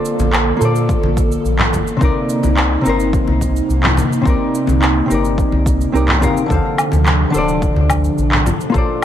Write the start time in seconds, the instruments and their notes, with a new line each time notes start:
Already playing: analog synth pad D3 A#3 A4, hollow-body jazz guitar A#3 F4 A4 C5 D5
0.05 cabasa
0.19 analog synth bass A#1, high conga, cabasa
0.33 clap, cabasa
0.57 analog synth bass A#2, hollow-body jazz guitar A#3 F4
0.61 hollow-body jazz guitar A4 C5, cabasa
0.65 hollow-body jazz guitar D5
0.75 cabasa
0.89 kick, cabasa
1.03 analog synth bass A#1, high conga
1.17 kick, cabasa
1.32 cabasa
1.45 analog synth bass A#1, cabasa
1.59 clap, low conga
1.73 kick, high conga, low conga, cabasa
1.87 cabasa
1.97 hollow-body jazz guitar C3 C4
2.01 analog synth bass C2, analog synth pad C3 D#4, hollow-body jazz guitar D#4 A#4 D5, kick, cabasa
2.29 cabasa
2.43 analog synth bass C2, high conga, cabasa
2.57 clap, cabasa
2.81 hollow-body jazz guitar C3 C4 D#4
2.85 analog synth bass G1, hollow-body jazz guitar A#4 C5, cabasa
3.00 cabasa
3.13 kick, cabasa
3.27 analog synth bass C2, high conga
3.41 kick, cabasa
3.56 cabasa
3.69 analog synth bass C2, cabasa
3.83 clap, low conga
3.97 high conga, low conga, cabasa
4.13 cabasa
4.22 hollow-body jazz guitar C3 C4, kick
4.26 analog synth bass C2, hollow-body jazz guitar D#4 A#4 D5, cabasa
4.55 cabasa
4.67 analog synth bass C2, high conga, cabasa
4.82 clap, cabasa
5.06 hollow-body jazz guitar C3 C4
5.10 analog synth bass G1, hollow-body jazz guitar D#4 A#4, cabasa
5.14 hollow-body jazz guitar D5
5.25 cabasa
5.38 kick, cabasa
5.52 analog synth bass C2, high conga
5.66 kick, cabasa
5.81 cabasa
5.92 analog synth bass C2, hollow-body jazz guitar C3 C4 D#4 A#4, cabasa
5.96 hollow-body jazz guitar D5
6.08 clap, low conga
6.20 hollow-body jazz guitar C3 C4 D#4 A#4 F5, kick, high conga, low conga, cabasa
6.37 cabasa
6.46 hollow-body jazz guitar D3 D4
6.50 analog synth bass D2, analog synth pad C3 F3 D4, hollow-body jazz guitar A4 C5 F5, kick, cabasa
6.78 cabasa, low woodblock
6.92 analog synth bass D2, high conga, cabasa
7.06 clap, cabasa
7.30 analog synth bass D1, hollow-body jazz guitar D3 D4
7.34 hollow-body jazz guitar A4 C5 D5, cabasa
7.48 cabasa
7.62 kick, cabasa
7.76 analog synth bass D2, high conga
7.90 kick, cabasa, low woodblock
8.04 cabasa
8.18 analog synth bass A#1, cabasa
8.32 clap, low conga
8.46 analog synth pad A#2 A4, high conga, low conga, cabasa
8.61 cabasa
8.70 hollow-body jazz guitar A#3 F4 A4
8.74 analog synth bass A#1, hollow-body jazz guitar C5 D5, kick, cabasa